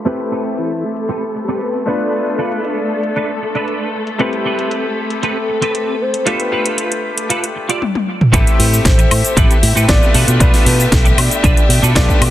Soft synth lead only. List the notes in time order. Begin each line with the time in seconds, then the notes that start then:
0.58 E4
0.84 A4
1.44 G4
1.61 B4
1.87 D5
2.39 F5
2.58 E5
2.65 D5
4.20 G4
5.23 A4
6.01 C5
6.27 B4
8.86 C5
9.37 E5
9.62 E5
9.88 D5
10.40 D5
10.66 B4
10.91 A4
11.17 D5